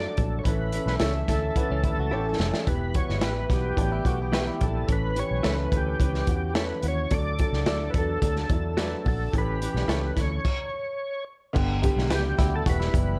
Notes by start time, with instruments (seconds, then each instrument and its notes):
Already playing: upright piano F#3 D4 A4, clean electric guitar F#3 D4, horn section A3 F#4 D5, tonewheel organ D5
0.17 fingered electric bass A#1, upright piano F#3 D4 A4, tonewheel organ A4, kick, closed hi-hat
0.39 tonewheel organ C#5
0.44 fingered electric bass A1, upright piano E3 C#4 A4, horn section C#4 A4 E5, tonewheel organ B4, kick, closed hi-hat
0.72 upright piano E3 C#4 A4, closed hi-hat
0.86 fingered electric bass B1, snare
1.00 fingered electric bass C#2, upright piano E3 C#4 A4, clean electric guitar E4 A4 C#5, snare, closed hi-hat
1.28 fingered electric bass D2, upright piano E3 C#4 A4, tonewheel organ A4, kick, snare, closed hi-hat
1.56 upright piano E3 C#4 B4, clean electric guitar B3, kick, closed hi-hat
1.71 fingered electric bass C#2, clean electric guitar E3 C#4
1.84 fingered electric bass D2, upright piano E3 C#4 B4, clean electric guitar G3 E4, kick, closed hi-hat
1.98 fingered electric bass C#2, clean electric guitar A3 F#4
2.11 fingered electric bass A1, upright piano E3 C#4 A4, clean electric guitar B3 E4 G4 A4 C#5
2.29 clean electric guitar C#4 A4
2.39 fingered electric bass F1, upright piano E3 C#4 A4, tonewheel organ A4, snare
2.54 snare
2.66 fingered electric bass E1, upright piano E3 B3 G4, horn section G3 E4 B4, tonewheel organ B4, kick, closed hi-hat
2.94 upright piano E3 B3 F#4, tonewheel organ C#5, kick, closed hi-hat
3.09 fingered electric bass G1, snare
3.21 fingered electric bass A1, upright piano E3 B3 G4, clean electric guitar E4 G4 B4, tonewheel organ B4, snare, closed hi-hat
3.50 fingered electric bass B1, upright piano E3 B3 F#4, tonewheel organ G4, kick, snare, closed hi-hat
3.76 fingered electric bass A1, upright piano E3 B3 G4, clean electric guitar F#3 D4, kick, closed hi-hat
3.92 clean electric guitar G3 E4
4.04 fingered electric bass B1, upright piano E3 B3 F#4, clean electric guitar A3 F#4, kick, closed hi-hat
4.22 clean electric guitar B3 G4
4.32 upright piano E3 B3 G4, clean electric guitar A3 E4 F#4 G4 B4, snare, closed hi-hat
4.47 clean electric guitar G3 E4
4.60 fingered electric bass A#1, upright piano E3 B3 G4, tonewheel organ A4, kick, closed hi-hat
4.87 fingered electric bass A1, upright piano E3 C#4 A4, horn section E3 C#4 B4, kick, closed hi-hat
4.92 tonewheel organ B4
5.15 upright piano E3 C#4 G4, closed hi-hat
5.19 tonewheel organ C#5
5.31 fingered electric bass B1
5.43 fingered electric bass C#2, upright piano E3 C#4 A4, clean electric guitar E4 A4 C#5, tonewheel organ B4, snare, closed hi-hat
5.72 fingered electric bass D2, upright piano E3 C#4 A4, kick, closed hi-hat
5.77 tonewheel organ G4
6.00 fingered electric bass C#2, upright piano E3 C#4 B4, kick, closed hi-hat
6.14 snare
6.26 fingered electric bass E2, upright piano E3 C#4 F#4, kick, closed hi-hat
6.54 upright piano E3 C#4 A4, clean electric guitar E4 A4 C#5, snare, closed hi-hat
6.60 tonewheel organ B4
6.82 fingered electric bass D#2, upright piano E3 C#4 F#4, closed hi-hat
6.88 tonewheel organ C#5
7.11 fingered electric bass D2, upright piano F#3 D4 A4, horn section F#3 D4 A4, tonewheel organ D5, kick, closed hi-hat
7.39 upright piano F#3 D4 A4, kick, closed hi-hat
7.52 fingered electric bass C#2, snare
7.66 fingered electric bass D2, upright piano F#3 D4 E4, clean electric guitar F#4 A4 D5, snare, closed hi-hat
7.90 tonewheel organ B4
7.94 fingered electric bass E2, upright piano F#3 D4 B4, kick, closed hi-hat
7.98 tonewheel organ A4
8.21 fingered electric bass D2, upright piano F#3 D4 A4, kick, closed hi-hat
8.36 snare
8.49 fingered electric bass E2, upright piano F#3 D4 E4, kick, closed hi-hat
8.77 upright piano F#3 D4 B4, clean electric guitar F#4 A4 D5, snare, closed hi-hat
9.04 fingered electric bass A#1, upright piano F#3 D4 F#4, kick, open hi-hat
9.08 tonewheel organ A4
9.32 fingered electric bass A1, horn section E3 C#4 G4, upright piano E3 C#4 A4, kick, closed hi-hat
9.38 tonewheel organ B4
9.62 upright piano E3 C#4 G4, closed hi-hat
9.74 fingered electric bass B1, snare
9.88 fingered electric bass C#2, upright piano E3 C#4 A4, clean electric guitar E4 A4 C#5, snare, closed hi-hat
10.16 fingered electric bass D2, upright piano E3 C#4 A4, tonewheel organ C#5, kick, snare, closed hi-hat
10.45 kick, crash
11.53 fingered electric bass G1, upright piano D3 G3 B3 G4, kick, crash
11.82 upright piano D3 G3 B3 G4, kick, closed hi-hat
11.96 fingered electric bass B1, snare
12.10 fingered electric bass C#2, upright piano D3, clean electric guitar D4 G4 B4, snare, closed hi-hat
12.15 tonewheel organ G4
12.38 fingered electric bass D2, upright piano D3 G3 B3 F#4, clean electric guitar G3 E4, kick, snare, closed hi-hat
12.56 tonewheel organ A4
12.66 fingered electric bass E1, upright piano E3 G3 B3 G4, clean electric guitar A3 F#4, tonewheel organ B4, kick, closed hi-hat
12.80 clean electric guitar G3 E4, snare
12.92 fingered electric bass F#1, upright piano E3 G3 B3 G4, kick, closed hi-hat